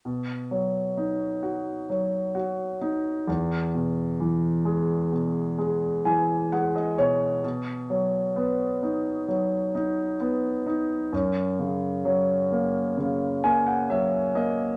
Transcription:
<<
  \new Staff \with { instrumentName = "Grand piano" } { \time 4/4 \key b \major \tempo 4 = 65 r1 | r2 r8 gis''8 fis''16 dis''16 cis''8 | r1 | r2 r8 gis''16 fis''16 e''8 dis''8 | }
  \new Staff \with { instrumentName = "Grand piano" } { \clef bass \time 4/4 \key b \major b,8 fis8 dis'8 fis'8 fis8 fis'8 dis'8 e,8 | b,8 e8 gis8 b,8 gis8 e8 gis8 b,8 | b,8 fis8 b8 dis'8 fis8 dis'8 b8 dis'8 | fis,8 cis8 fis8 ais8 cis8 ais8 fis8 ais8 | }
>>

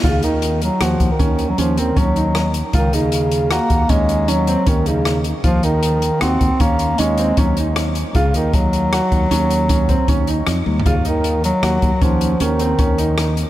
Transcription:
<<
  \new Staff \with { instrumentName = "Grand piano" } { \time 7/4 \key ees \dorian \tempo 4 = 155 f'8 ees'4 r8 ges'4 des'4 des'8 c'8 des'8 ees'4 r8 | f'8 ees'4 r8 ges'4 des'4 des'8 c'8 des'8 ees'4 r8 | f'8 ees'4 r8 ges'4 des'4 des'8 c'8 des'8 ees'4 r8 | f'8 ees'4 r8 ges'4 des'4 des'8 c'8 des'8 ees'4 r8 |
f'8 ees'4 r8 ges'4 des'4 des'8 c'8 des'8 ees'4 r8 | }
  \new Staff \with { instrumentName = "Bass clarinet" } { \clef bass \time 7/4 \key ees \dorian des8 ees4 ges8 f8. ees4 ges16 f8 ees8 ges4. r8 | ees8 des4. bes4 aes4 ges4 ees8 des4 r8 | f8 ees4. c'4 bes4 aes4 ges8 r4. | des8 ees8 ges1~ ges4 r4 |
des8 ees4 ges4. f4 ees2~ ees8 r8 | }
  \new Staff \with { instrumentName = "Fretless electric bass" } { \clef bass \time 7/4 \key ees \dorian ees,2 ees,8 ees,16 r16 ees,4 ees,4 ees,2 | des,8 ees,2 ees,8 ees,2 ees,2 | ees,2 ees,8 ees,16 r16 ees,4 ees,4 ees,2 | des,8 ees,2 ees,8 ees,2 ees,4 f,8 ees,8 |
ees,2 ees,8 ees,16 r16 ees,4 ees,4 ees,2 | }
  \new DrumStaff \with { instrumentName = "Drums" } \drummode { \time 7/4 <hh bd>8 hh8 hh8 hh8 <hh ss>8 <hh bd>8 <hh bd>8 hh8 hh8 hh8 <hh bd>8 hh8 <hh ss>8 hh8 | <hh bd>8 hh8 hh8 hh8 <hh ss>8 <hh bd>8 <hh bd>8 hh8 hh8 hh8 <hh bd>8 hh8 <hh ss>8 hh8 | <hh bd>8 hh8 hh8 hh8 <hh ss>8 <hh bd>8 <hh bd>8 hh8 hh8 hh8 <hh bd>8 hh8 <hh ss>8 hh8 | <hh bd>8 hh8 <hh bd>8 hh8 <hh ss>8 <hh bd>8 hh8 hh8 <hh bd>8 <hh bd>8 <hh bd>8 hh8 \tuplet 3/2 { <hh ss>16 r16 r16 tommh16 r16 tomfh16 } |
<hh bd>8 hh8 hh8 hh8 <hh ss>8 <hh bd>8 <hh bd>8 hh8 hh8 hh8 <hh bd>8 hh8 <hh ss>8 hh8 | }
>>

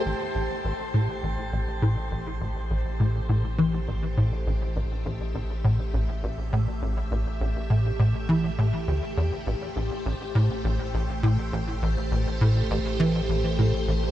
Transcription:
<<
  \new Staff \with { instrumentName = "String machine" } { \time 4/4 \key a \minor \tempo 4 = 102 << { c''1~ | c''1 | e''1~ | e''1 |
c''1~ | c''1 | } \\ { <a g'>1~ | <a g'>1~ | <a g'>1~ | <a g'>1~ |
<a g'>1~ | <a g'>1 | } >> }
  \new Staff \with { instrumentName = "Analog synth bass" } { \clef bass \time 4/4 \key a \minor a,,8 a,,16 r16 a,,8 a,16 r16 a,,16 r16 a,,16 r16 a,16 r16 a,,8 | a,,16 r16 a,,16 r16 a,8 a,16 r16 e8 a,,16 r16 a,16 r16 a,,8 | a,,8 a,,16 r16 a,,8 a,16 r16 a,,16 r16 a,,16 r16 a,16 r16 a,,8 | a,,16 r16 a,,16 r16 a,8 a,16 r16 e8 a,16 r16 d,16 r16 e,16 r16 |
a,,8 a,,16 r16 a,,8 a,16 r16 a,,16 r16 a,,16 r16 a,16 r16 a,,8 | a,,16 r16 a,,16 r16 a,8 a,,8 e8 a,,16 r16 a,16 r16 a,,8 | }
  \new Staff \with { instrumentName = "Sub bass" } { \clef bass \time 4/4 \key a \minor a,,1~ | a,,1~ | a,,1~ | a,,1 |
a,,1~ | a,,1 | }
>>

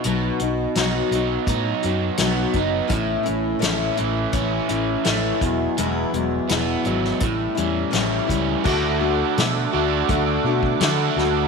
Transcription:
<<
  \new Staff \with { instrumentName = "Accordion" } { \time 4/4 \key a \lydian \tempo 4 = 84 r1 | r1 | r1 | \key d \major <a' fis'' d'''>1 | }
  \new Staff \with { instrumentName = "Steel-string acoustic guitar" } { \time 4/4 \key a \lydian <b, fis b dis' fis'>8 <b dis' fis'>8 <b, fis b dis' fis'>8 <b dis' fis'>8 <fis b dis' fis'>8 <b dis' fis'>8 <b, fis b dis' fis'>8 <b dis' fis'>8 | <a, e a cis' e'>8 <a cis' e'>8 <a, e a cis' e'>8 <a cis' e'>8 <e a cis' e'>8 <a cis' e'>8 <a, e a cis' e'>8 <fis gis b e'>8 | <e, b, fis gis b e'>8 <fis gis b e'>8 <e, b, fis gis b e'>8 <fis gis b e'>8 <e g cis' e'>8 <g cis' e'>8 <a, e g cis' e'>8 <g cis' e'>8 | \key d \major <d a d' fis'>8 <a d' fis'>8 <d a d' fis'>8 <a d' fis'>8 <d a d' fis'>8 <a d' fis'>8 <d a d' fis'>8 <a d' fis'>8 | }
  \new Staff \with { instrumentName = "Overdriven electric guitar" } { \time 4/4 \key a \lydian b,4 dis'8 fis8 dis'8 fis8 b8 dis'8 | a,4 cis'8 e8 cis'8 e8 a8 e,8 | e,4 b8 fis8 a,8 e8 g8 cis'8 | \key d \major <d a d' fis'>4. <d a d' fis'>4. <d a d' fis'>4 | }
  \new Staff \with { instrumentName = "Fingered electric bass" } { \clef bass \time 4/4 \key a \lydian b,,8 b,,8 b,,8 b,,8 a,8 fis,8 b,,8 fis,,8 | a,,8 a,,8 a,,8 a,,8 a,,8 a,,8 a,,8 e,,8 | e,,8 e,,8 e,,8 gis,,8 a,,8 e,8 a,,8 cis,8 | \key d \major d,4 b,8 d,8 d,8 b,8 d8 d,8 | }
  \new DrumStaff \with { instrumentName = "Drums" } \drummode { \time 4/4 hh8 hh8 <hh sn>8 hh8 <hh bd>8 hh8 <hh sn>8 <hh bd>8 | <hh bd>8 hh8 <hh sn>8 hh8 <hh bd>8 hh8 <hh sn>8 <hh bd>8 | hh8 hh8 <hh sn>8 hh16 sn16 <hh bd>8 hh8 <hh sn>8 <hh bd>8 | <cymc bd>4 <hh sn>4 <hh bd>8. bd16 <hh sn>8 sn8 | }
>>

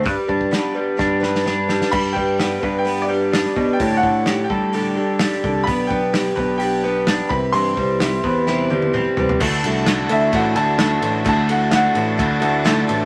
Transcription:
<<
  \new Staff \with { instrumentName = "Grand piano" } { \time 4/4 \key d \mixolydian \tempo 4 = 128 r1 | b''8 g''4. g''8 d''4. | g''8 fis''4 g''4. r4 | b''8 g''4. g''4. b''8 |
c'''2. r4 | r4. e''8 fis''8 <gis'' a''>4. | a''8 fis''8 <f'' fis''>2 r4 | }
  \new Staff \with { instrumentName = "Tonewheel organ" } { \time 4/4 \key d \mixolydian r1 | r1 | r1 | r1 |
r1 | <e' fis' a' d''>1~ | <e' fis' a' d''>1 | }
  \new Staff \with { instrumentName = "Twelve-string acoustic guitar" } { \time 4/4 \key d \mixolydian <g d' g' b'>8 <d' g' b'>8 <g d' g' b'>8 <d' g' b'>8 <g d' g' b'>8 <d' g' b'>8 <g d' g' b'>8 <d' g' b'>8 | <g d' g' b'>8 <d' g' b'>8 <g d' g' b'>8 <d' g' b'>8 <g d' g' b'>8 <d' g' b'>8 <g d' g' b'>8 <d' g' b'>8 | <a, d g d' g' a'>8 <g d' g' a'>8 <g d' g' a'>8 <g d' g' a'>8 <a, d g d' g' a'>8 <g d' g' a'>8 <g d' g' a'>8 <g d' g' a'>8 | <b d' g' b'>8 <d' g' b'>8 <b d' g' b'>8 <d' g' b'>8 <b d' g' b'>8 <d' g' b'>8 <b d' g' b'>8 <g c' g' b'>8 |
<c e g c' g' b'>8 <g c' g' b'>8 <g c' g' b'>8 <g c' g' b'>8 <c e g c' g' b'>8 <g c' g' b'>8 <g c' g' b'>8 <g c' g' b'>8 | <d a e' fis' a'>8 <e' fis' a'>8 <d a e' fis' a'>8 <e' fis' a'>8 <a e' fis' a'>8 <e' fis' a'>8 <d a e' fis' a'>8 <e' fis' a'>8 | <d a e' fis' a'>8 <e' fis' a'>8 <d a e' fis' a'>8 <e' fis' a'>8 <a e' fis' a'>8 <e' fis' a'>8 <d a e' fis' a'>8 <e' fis' a'>8 | }
  \new Staff \with { instrumentName = "Clean electric guitar" } { \time 4/4 \key d \mixolydian g8 d'8 b8 g8 d'8 b'8 d'8 g8 | g8 g8 b8 b'8 b8 g8 d'8 g8 | a,8 d8 g'8 a'8 g'8 d8 g8 d8 | b8 b8 g'8 b'8 g'8 b8 d'8 c8 |
c8 g8 e'8 b'8 e'8 g8 c'8 g8 | <d a d' e' fis'>4 <a d' e' fis'>8 <d' e' fis'>8 <a d' e' fis'>8 <d' e' fis'>8 <d a d' e' fis'>4 | <d a d' e' fis'>4 <a d' e' fis'>8 <d' e' fis'>8 <a d' e' fis'>8 <d' e' fis'>8 <d a d' e' fis'>4 | }
  \new Staff \with { instrumentName = "Picked electric bass" } { \clef bass \time 4/4 \key d \mixolydian g,16 r16 g,8 r4 g,2 | g,8 g,4 g,2 b,8 | a,8 a,4 g2 c,8 | b,,8 b,,4 b,,2 c,8 |
g,8 c,4 e,2 c,8 | d,8 c,4 d,8 a,,8 d,4 a,,8 | d,4. a,,8 d,8 d,4 a,,8 | }
  \new DrumStaff \with { instrumentName = "Drums" } \drummode { \time 4/4 <hho bd>8 bd16 bd16 <hho sn>4 <bd sn>8 sn16 sn16 sn8 sn16 sn16 | <cymc bd>8 bd8 <hho sn>8 bd8 hho4 <hho sn>16 sn16 bd8 | <hho bd>8 bd8 <hho sn>8 bd8 hho4 <hho sn>16 sn16 bd8 | <hho bd>8 bd8 <hho sn>8 bd8 hho4 <hho sn>8 bd8 |
hho8 bd8 <hho sn>8 bd8 sn8 tommh16 tommh16 toml8 tomfh16 tomfh16 | <cymc bd>8 cymr8 <cymr sn>8 cymr8 <bd cymr>8 cymr8 <cymr sn>8 cymr8 | <bd cymr>8 cymr8 <cymr sn>8 cymr8 <bd cymr>8 cymr8 <cymr sn>8 cymr8 | }
>>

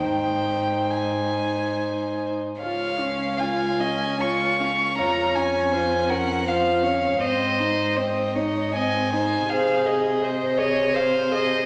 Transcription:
<<
  \new Staff \with { instrumentName = "Violin" } { \time 3/4 \key aes \major \tempo 4 = 78 g''4 aes''4. r8 | \key des \major f''4 aes''4 des'''4 | bes''8 aes''4 ges''8 f''4 | c''4 ees''4 aes''4 |
f''8 ees''4 des''8 c''4 | }
  \new Staff \with { instrumentName = "Violin" } { \time 3/4 \key aes \major c''2~ c''8. r16 | \key des \major des''4 f''8 ees''8 des''8 f''8 | des''4 c''8 bes'8 c''8 des''8 | ees''4 c''8 des''8 ees''8 c''8 |
aes'4 c''8 ees''8 f''8 ees''8 | }
  \new Staff \with { instrumentName = "Viola" } { \time 3/4 \key aes \major ees'2~ ees'8. r16 | \key des \major f'8 des'8 f'8 des'8 f'8 des'8 | f'8 des'8 f'8 des'8 f'8 des'8 | c'8 ees'8 c'8 ees'8 c'8 ees'8 |
c''8 aes'8 c''8 aes'8 c''8 aes'8 | }
  \new Staff \with { instrumentName = "Cello" } { \clef bass \time 3/4 \key aes \major aes,2~ aes,8. r16 | \key des \major des,2. | f,2. | aes,2. |
c2. | }
>>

